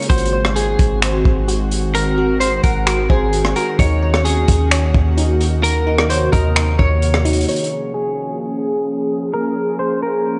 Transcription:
0.00 3.75 G#3 medium
0.00 0.10 A#4 medium
0.00 closed hi-hat medium
0.10 0.76 G#1 loud
0.10 7.44 D#3 medium
0.10 3.75 C4 medium
0.10 3.75 F#4 medium
0.10 1.47 F#4 medium
0.10 0.53 C5 loud
0.10 kick loud
0.10 closed hi-hat medium
0.18 closed hi-hat medium
0.25 closed hi-hat medium
0.33 1.01 C5 medium
0.45 cross-stick loud
0.56 0.99 G#4 medium
0.56 closed hi-hat medium
0.79 1.23 G#1 loud
0.79 kick loud
0.79 closed hi-hat medium
1.02 2.39 C5 medium
1.02 finger snap loud
1.02 closed hi-hat medium
1.25 2.60 G#1 loud
1.25 kick medium
1.48 2.17 F#4 medium
1.48 closed hi-hat medium
1.71 closed hi-hat medium
1.95 2.38 A#4 loud
1.95 closed hi-hat medium
2.18 2.85 F#4 loud
2.40 3.08 C5 medium
2.40 2.62 C5 medium
2.40 closed hi-hat medium
2.63 3.08 G#1 loud
2.63 3.07 A#4 medium
2.63 3.79 F#5 medium
2.63 kick medium
2.63 closed hi-hat medium
2.87 3.55 F#4 loud
2.87 finger snap loud
2.87 closed hi-hat medium
3.10 3.54 G#1 loud
3.10 3.53 G#4 medium
3.10 3.79 C5 medium
3.10 kick medium
3.33 closed hi-hat medium
3.45 cross-stick loud
3.56 3.79 F#4 loud
3.56 3.78 A#4 medium
3.56 closed hi-hat medium
3.79 4.46 D#2 loud
3.79 7.45 A#3 medium
3.79 5.62 C#4 medium
3.79 5.16 D#4 medium
3.79 7.45 F#4 medium
3.79 4.23 C#5 medium
3.79 kick loud
3.79 closed hi-hat medium
4.02 4.70 C#5 medium
4.14 cross-stick loud
4.25 4.68 G#4 medium
4.25 closed hi-hat medium
4.48 4.93 D#2 loud
4.48 kick loud
4.48 closed hi-hat medium
4.71 6.09 C#5 medium
4.71 finger snap loud
4.71 closed hi-hat medium
4.94 6.29 D#2 loud
4.94 kick medium
5.17 5.86 D#4 medium
5.17 closed hi-hat medium
5.41 closed hi-hat medium
5.63 7.46 C3 medium
5.63 6.07 A#4 loud
5.63 closed hi-hat medium
5.87 6.55 D#4 loud
5.98 cross-stick medium
6.10 6.32 C5 medium
6.10 6.77 C#5 medium
6.10 closed hi-hat medium
6.32 6.77 D#2 loud
6.32 6.76 A#4 medium
6.32 7.48 D#5 medium
6.32 kick loud
6.32 closed hi-hat medium
6.56 7.24 D#4 medium
6.56 finger snap loud
6.56 closed hi-hat medium
6.79 7.46 D#2 loud
6.79 7.48 C#5 medium
6.79 7.44 C#5 medium
6.79 kick medium
7.02 closed hi-hat medium
7.14 cross-stick loud
7.25 7.48 D#4 loud
7.25 closed hi-hat medium
7.33 closed hi-hat medium
7.41 closed hi-hat medium
7.48 10.39 F3 medium
7.48 10.39 A#3 medium
7.48 10.39 C#4 medium
7.48 10.39 G#4 medium
7.48 7.92 C#5 loud
7.48 closed hi-hat medium
7.56 closed hi-hat medium
7.64 closed hi-hat medium
7.94 8.38 G#4 medium
9.34 9.77 A#4 loud
9.79 10.01 C5 medium
10.03 10.39 A#4 medium

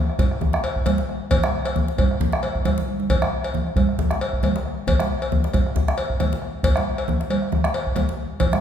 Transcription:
0.09 bombo rim soft
0.09 high conga soft
0.19 bombo low loud
0.19 cowbell soft
0.19 high conga medium
0.31 bombo rim soft
0.41 bombo rim soft
0.41 djembe slap soft
0.41 djembe bass medium
0.41 low conga medium
0.53 bombo rim medium
0.53 djembe slap medium
0.53 djembe tone medium
0.64 cowbell medium
0.76 bombo low medium
0.86 bombo rim soft
0.86 cowbell medium
0.86 high conga medium
0.86 djembe bass medium
0.86 low conga medium
0.98 djembe slap medium
0.98 high conga soft
1.09 bombo rim soft
1.09 high conga soft
1.31 bombo low medium
1.31 cowbell medium
1.31 high conga soft
1.31 djembe bass medium
1.31 low conga medium
1.43 bombo rim medium
1.43 djembe slap medium
1.43 djembe tone medium
1.43 high conga soft
1.65 bombo rim soft
1.65 cowbell medium
1.65 djembe slap soft
1.65 high conga soft
1.76 low conga medium
1.76 djembe bass medium
1.88 djembe slap soft
1.98 bombo low loud
1.98 cowbell medium
1.98 high conga medium
2.11 bombo rim soft
2.20 djembe bass medium
2.20 low conga medium
2.32 bombo rim medium
2.32 djembe slap soft
2.32 djembe tone soft
2.43 cowbell medium
2.43 high conga soft
2.55 bombo low medium
2.55 high conga soft
2.65 bombo rim soft
2.65 cowbell soft
2.65 djembe slap soft
2.65 high conga medium
2.65 djembe bass medium
2.65 low conga medium
2.78 djembe slap soft
2.78 low conga soft
2.88 high conga soft
3.00 high conga medium
3.10 bombo low medium
3.10 cowbell medium
3.10 low conga medium
3.10 djembe bass medium
3.22 bombo rim medium
3.22 djembe slap soft
3.22 high conga soft
3.22 djembe tone soft
3.44 cowbell soft
3.54 djembe bass medium
3.54 low conga medium
3.67 bombo rim soft
3.67 high conga soft
3.76 bombo low loud
3.76 cowbell soft
3.76 high conga medium
3.89 bombo rim soft
3.99 bombo rim soft
3.99 djembe slap soft
3.99 djembe bass medium
3.99 low conga medium
4.11 bombo rim medium
4.11 djembe slap medium
4.11 djembe tone medium
4.21 cowbell medium
4.33 bombo low medium
4.43 bombo rim soft
4.43 cowbell soft
4.43 high conga medium
4.43 djembe bass medium
4.43 low conga medium
4.56 djembe slap medium
4.56 high conga soft
4.65 bombo rim soft
4.65 high conga soft
4.87 bombo low medium
4.87 cowbell medium
4.87 djembe bass medium
4.87 low conga medium
5.00 bombo rim medium
5.00 djembe slap medium
5.00 high conga soft
5.00 djembe tone medium
5.22 cowbell soft
5.32 low conga medium
5.32 djembe bass medium
5.44 bombo rim soft
5.44 djembe slap medium
5.44 high conga soft
5.53 bombo low loud
5.53 cowbell soft
5.53 high conga medium
5.66 bombo rim soft
5.76 bombo rim soft
5.76 djembe slap soft
5.76 djembe bass medium
5.76 low conga medium
5.88 bombo rim medium
5.88 djembe slap medium
5.88 djembe tone medium
5.98 cowbell medium
6.10 bombo low medium
6.20 bombo rim soft
6.20 cowbell soft
6.20 high conga medium
6.20 low conga medium
6.20 djembe bass medium
6.32 djembe slap medium
6.32 high conga soft
6.42 bombo rim soft
6.42 high conga soft
6.63 bombo low medium
6.63 cowbell medium
6.63 low conga medium
6.63 djembe bass medium
6.76 bombo rim medium
6.76 djembe slap soft
6.76 high conga medium
6.76 djembe tone medium
6.98 cowbell soft
7.08 low conga medium
7.08 djembe bass medium
7.20 bombo rim soft
7.20 djembe slap medium
7.20 high conga soft
7.30 cowbell medium
7.30 high conga medium
7.42 bombo rim soft
7.52 bombo rim soft
7.52 djembe slap soft
7.52 low conga medium
7.52 djembe bass medium
7.64 bombo rim medium
7.64 djembe slap medium
7.64 djembe tone medium
7.74 cowbell medium
7.87 bombo low medium
7.96 bombo rim soft
7.96 cowbell soft
7.96 high conga medium
7.96 low conga medium
7.96 djembe bass medium
8.08 djembe slap medium
8.08 high conga soft
8.18 high conga soft
8.40 bombo low medium
8.40 cowbell medium
8.40 djembe slap soft
8.40 low conga medium
8.40 djembe bass medium
8.52 bombo rim medium
8.52 djembe slap medium
8.52 high conga medium
8.52 djembe tone soft

